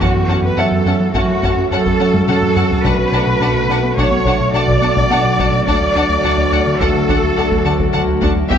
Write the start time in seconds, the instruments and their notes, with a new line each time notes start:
Already playing: felt piano F#5
0.00 analog synth bass F#2, double bass section F#2, synth drone F#3 A3 C#4 F#4, french horn section A3 F#4, viola section C#4, cello section F#4, violin section F#5 A5, taiko
0.15 analog synth bass F#2
0.28 analog synth bass F#2, viola section C#4, violin section F#5 A5
0.42 analog synth bass F#2, cello section B4
0.57 analog synth bass F#2, double bass section F#2, viola section C#4, cello section A4, felt piano E5, violin section F#5 A5
0.72 analog synth bass F#2
0.86 analog synth bass F#2, viola section C#4, violin section F#5 A5
1.00 analog synth bass F#3
1.14 analog synth bass F#2, double bass section F#2, viola section C#4, cello section F#4, violin section F#5 A5, taiko
1.28 analog synth bass F#3
1.43 analog synth bass F#2, viola section C#4, violin section F#5 A5, taiko
1.57 analog synth bass F#2
1.71 double bass section F#2, analog synth bass F#2, viola section C#4, cello section A4, violin section F#5 A5
1.85 analog synth bass F#2, taiko
1.99 analog synth bass F#3, viola section C#4, violin section F#5 A5
2.14 analog synth bass F#2, taiko high
2.27 double bass section F#2, analog synth bass F#3, viola section C#4, cello section A4, violin section F#5 A5, taiko mid
2.42 analog synth bass F#2, taiko low-mid
2.56 analog synth bass F#2, viola section C#4, violin section F#5 A5, taiko low-mid
2.70 analog synth bass F#2, taiko low
2.84 double bass section B1, analog synth bass B2, viola section D4, synth drone D4, cello section B4, violin section F#5 A5, taiko
2.98 analog synth bass B2
3.12 analog synth bass B2, viola section D4, violin section F#5 A5
3.27 analog synth bass B2
3.40 double bass section B1, analog synth bass B2, viola section D4, violin section F#5 A5
3.55 analog synth bass B2
3.68 analog synth bass B2, viola section D4, violin section F#5 A5
3.83 analog synth bass B3
3.97 double bass section B1, analog synth bass B2, viola section D4, cello section C#5, violin section F#5 A5, taiko
4.11 analog synth bass B3
4.25 analog synth bass B2, viola section D4, violin section F#5 A5, taiko
4.40 analog synth bass B2
4.54 double bass section B1, analog synth bass B2, viola section D4, cello section D5, violin section F#5 A5
4.68 analog synth bass B2, taiko
4.82 analog synth bass B3, viola section D4, violin section F#5 A5
4.96 analog synth bass B2, taiko
5.10 double bass section B1, analog synth bass B3, viola section D4, violin section F#5 A5, felt piano F#5
5.25 analog synth bass B2
5.38 analog synth bass B2, viola section D4, violin section F#5 A5, taiko
5.53 analog synth bass B2
5.66 analog synth bass D2, double bass section D2, synth drone F#3 A3 F#4, french horn section A3 F#4, viola section D4, cello section D5, violin section F#5 A5, taiko
5.80 analog synth bass D2
5.95 analog synth bass D2, viola section D4, violin section F#5 A5
6.09 analog synth bass D2
6.23 double bass section D2, analog synth bass D2, viola section D4, violin section F#5 A5
6.38 analog synth bass D2
6.52 analog synth bass D2, viola section D4, violin section F#5 A5
6.67 analog synth bass D3
6.80 double bass section D2, analog synth bass D2, viola section D4, cello section A4, violin section F#5 A5, taiko
6.95 analog synth bass D3
7.09 analog synth bass D2, viola section D4, violin section F#5 A5, taiko
7.23 analog synth bass D2
7.36 double bass section D2, analog synth bass D2, viola section D4, violin section F#5 A5
7.51 analog synth bass D2, taiko
7.65 analog synth bass D3, viola section D4, violin section F#5 A5
7.80 analog synth bass D2, taiko
7.93 double bass section D2, analog synth bass D3, viola section D4, violin section F#5 A5
8.08 analog synth bass D2
8.21 analog synth bass D2, viola section D4, violin section F#5 A5, taiko
8.36 analog synth bass D2
8.50 double bass section E2, analog synth bass E2, viola section B3, french horn section B3 E4, cello section G4, violin section E5 G5, taiko